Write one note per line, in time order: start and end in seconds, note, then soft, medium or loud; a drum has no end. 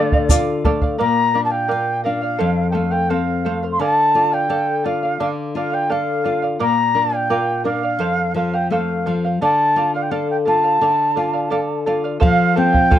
0.00 0.96 D3 medium
0.00 0.29 A3 medium
0.00 0.13 A4 medium
0.00 0.12 D5 medium
0.00 0.29 D5 medium
0.00 0.11 F5 medium
0.12 0.29 D5 soft
0.12 0.29 F5 soft
0.12 bombo low medium
0.29 0.64 F4 medium
0.29 0.63 A4 medium
0.29 0.64 D5 medium
0.29 0.64 F5 medium
0.29 bombo low medium
0.29 shaker loud
0.64 0.99 A3 medium
0.64 0.83 A4 medium
0.64 0.82 D5 medium
0.64 0.80 F5 medium
0.64 bombo low medium
0.81 0.97 D5 soft
0.81 0.98 F5 medium
0.81 bombo low medium
0.98 2.37 A#2 medium
0.98 1.32 A#4 medium
0.98 1.33 D5 medium
0.98 1.34 F5 medium
0.98 1.42 A#5 medium
1.34 1.69 D4 soft
1.34 1.52 A#4 soft
1.34 1.51 D5 soft
1.34 1.50 F5 soft
1.44 1.52 A5 medium
1.50 1.68 D5 soft
1.50 1.67 F5 soft
1.50 2.03 G5 medium
1.68 2.05 F4 soft
1.68 2.03 A#4 medium
1.68 2.04 D5 medium
1.68 2.04 F5 medium
2.04 2.40 D4 soft
2.04 2.22 A#4 soft
2.04 2.21 D5 medium
2.04 2.67 F5 medium
2.04 2.20 F5 medium
2.22 2.38 D5 soft
2.22 2.38 F5 soft
2.38 3.77 F2 medium
2.38 2.71 A4 medium
2.38 2.71 C5 medium
2.38 2.72 F5 medium
2.70 2.92 A4 soft
2.70 2.91 C5 soft
2.70 2.90 F5 soft
2.70 2.92 F5 medium
2.70 2.75 G5 medium
2.75 3.09 A3 soft
2.91 3.09 C5 soft
2.91 3.10 F5 soft
2.91 3.11 G5 medium
3.09 3.45 C4 soft
3.09 3.43 A4 medium
3.09 3.44 C5 medium
3.09 3.63 F5 medium
3.09 3.45 F5 medium
3.45 3.80 A3 soft
3.45 3.63 A4 soft
3.45 3.63 C5 medium
3.45 3.62 F5 medium
3.63 3.81 C5 soft
3.63 3.80 F5 soft
3.72 3.81 C6 medium
3.80 5.17 D3 medium
3.80 4.14 A4 medium
3.80 4.14 D5 medium
3.80 4.15 F5 medium
3.80 4.35 A5 medium
4.15 4.49 F4 soft
4.15 4.33 A4 soft
4.15 4.32 D5 medium
4.15 4.31 F5 medium
4.32 4.49 D5 soft
4.32 4.49 F5 soft
4.32 4.79 G5 medium
4.49 4.83 A4 medium
4.49 4.85 A4 medium
4.49 4.84 D5 medium
4.49 4.85 F5 medium
4.79 4.87 G5 medium
4.84 5.20 F4 soft
4.84 5.03 A4 soft
4.84 5.03 D5 soft
4.84 5.29 F5 medium
4.84 5.02 F5 medium
5.03 5.19 D5 soft
5.03 5.20 F5 soft
5.20 6.57 D3 medium
5.20 5.55 A4 medium
5.20 5.55 D5 medium
5.20 5.56 F5 medium
5.55 5.90 F4 soft
5.55 5.74 A4 soft
5.55 5.72 D5 medium
5.55 5.75 F5 medium
5.55 5.71 F5 medium
5.72 5.89 D5 soft
5.72 5.89 F5 soft
5.72 5.92 G5 medium
5.89 6.23 A4 medium
5.89 6.25 A4 soft
5.89 6.24 D5 medium
5.89 6.24 F5 medium
5.89 6.44 F5 medium
6.24 6.60 F4 soft
6.24 6.43 A4 soft
6.24 6.42 D5 soft
6.24 6.41 F5 soft
6.42 6.59 D5 soft
6.42 6.59 F5 soft
6.59 7.97 A#2 medium
6.59 6.93 A#4 medium
6.59 6.94 D5 medium
6.59 6.95 F5 medium
6.59 7.16 A#5 medium
6.95 7.30 D4 soft
6.95 7.13 A#4 soft
6.95 7.12 D5 soft
6.95 7.11 F5 soft
7.12 7.29 D5 soft
7.12 7.30 F5 soft
7.12 7.64 G5 medium
7.30 7.65 F4 soft
7.30 7.63 A#4 medium
7.30 7.64 D5 medium
7.30 7.65 F5 medium
7.64 8.00 D4 soft
7.64 7.83 A#4 medium
7.64 7.83 D5 medium
7.64 8.32 F5 medium
7.64 7.82 F5 medium
7.83 7.99 D5 soft
7.83 8.00 F5 soft
7.99 9.36 F2 medium
7.99 8.34 A4 medium
7.99 8.35 C5 medium
7.99 8.35 F5 medium
8.34 8.70 F3 soft
8.34 8.54 A4 medium
8.34 8.53 C5 medium
8.34 8.52 F5 medium
8.34 8.56 F5 medium
8.53 8.71 C5 soft
8.53 8.71 F5 soft
8.53 8.70 G5 medium
8.70 9.05 A3 soft
8.70 9.05 A4 medium
8.70 9.05 C5 medium
8.70 9.20 F5 medium
8.70 9.06 F5 medium
9.06 9.41 F3 soft
9.06 9.24 A4 soft
9.06 9.24 C5 soft
9.06 9.23 F5 medium
9.25 9.43 C5 soft
9.25 9.41 F5 soft
9.41 10.78 D3 medium
9.41 9.75 A4 medium
9.41 9.76 D5 medium
9.41 9.77 F5 medium
9.41 9.91 A5 medium
9.76 10.10 F4 soft
9.76 9.94 A4 soft
9.76 9.94 D5 medium
9.76 9.93 F5 medium
9.94 10.10 D5 soft
9.94 10.11 F5 soft
9.94 10.04 F5 medium
10.02 10.12 G5 medium
10.11 10.44 A4 medium
10.11 10.46 A4 soft
10.11 10.45 D5 medium
10.11 10.30 F5 medium
10.11 10.46 F5 medium
10.30 10.36 G5 medium
10.45 10.81 F4 soft
10.45 10.64 A4 soft
10.45 10.63 D5 medium
10.45 10.62 F5 medium
10.45 11.83 A5 medium
10.63 10.80 D5 soft
10.63 10.81 F5 soft
10.81 12.17 D3 medium
10.81 11.15 A4 medium
10.81 11.15 D5 medium
10.81 11.16 F5 medium
11.16 11.51 F4 soft
11.16 11.34 A4 soft
11.16 11.33 D5 soft
11.16 11.32 F5 medium
11.33 11.50 D5 soft
11.33 11.51 F5 soft
11.50 11.85 A4 medium
11.50 11.86 A4 soft
11.50 11.85 D5 medium
11.50 11.86 F5 medium
11.86 12.21 F4 soft
11.86 12.04 A4 medium
11.86 12.04 D5 medium
11.86 12.03 F5 medium
12.04 12.19 D5 soft
12.04 12.20 F5 soft
12.20 12.99 F3 medium
12.20 12.54 A4 medium
12.20 12.55 C5 medium
12.20 12.55 F5 medium
12.20 bombo low medium
12.24 12.55 F5 medium
12.56 12.91 C4 medium
12.56 12.73 A4 medium
12.56 12.72 C5 medium
12.56 12.71 F5 medium
12.56 12.99 G5 loud
12.72 12.90 C5 soft
12.72 12.90 F5 soft
12.72 bombo low medium
12.91 12.99 F4 medium
12.91 12.99 A4 medium
12.91 12.99 C5 medium
12.91 12.99 F5 medium
12.91 bombo low medium